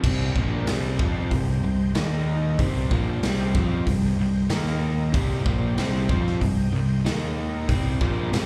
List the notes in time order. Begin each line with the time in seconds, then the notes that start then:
0.02 C2 C3 G3 C4 D#4 G4 C5, kick, crash
0.06 C4
0.36 A#1 A#2 F3 A#3, kick
0.67 C2 C3 G3 C4, snare, open hi-hat
0.99 F2 F3 C4 F4, kick
1.31 C2 C3 G3, kick, open hi-hat
1.64 C2 C3 G3
1.95 D#2 D#3 A#3 D#4 A#4 D#5, snare, open hi-hat
2.58 C2 C3 G3 C4 D#4 G4 C5, kick, open hi-hat
2.91 A#1 A#2 F3 A#3, kick
3.23 C2 C3 G3 C4, snare, open hi-hat
3.55 F2 F3 C4 F4, kick
3.87 C2 C3 G3, kick, open hi-hat
4.19 C2 C3 G3
4.49 D#2 D#3 A#3 D#4 A#4 D#5, snare, open hi-hat
4.67 snare
5.12 C2 C3 G3 C4 D#4 G4 C5, kick, open hi-hat
5.45 A#1 A#2 F3 A#3, kick
5.78 C2 C3 G3 C4, snare, open hi-hat
6.09 F2 F3 C4 F4, kick
6.27 snare
6.41 C2 C3 G3, kick, open hi-hat
6.73 C2 C3 G3
7.05 D#2 D#3 A#3 D#4 A#4 D#5, snare, open hi-hat
7.68 C2 C3 D#3 G3 C4 G4 C5, kick, open hi-hat
8.01 A#1 A#2 F3 A#3, kick
8.33 C2 C3 G3 C4, snare, open hi-hat